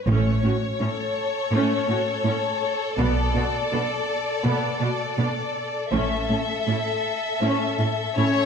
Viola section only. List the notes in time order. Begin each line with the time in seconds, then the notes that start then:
0.09 A3 C#4
0.44 C#4 F#4
0.80 C#4
1.53 A3 C#4
1.89 C#4 F#4
2.26 C#4
2.98 B3
3.35 B3 F#4
3.72 B3 D4
4.44 B3
4.81 B3 F#4
5.19 B3 D4
5.92 C#4
6.30 C#4 A4
6.68 C#4 E4
7.42 C#4
7.79 C#4 A4
8.16 C#4 E4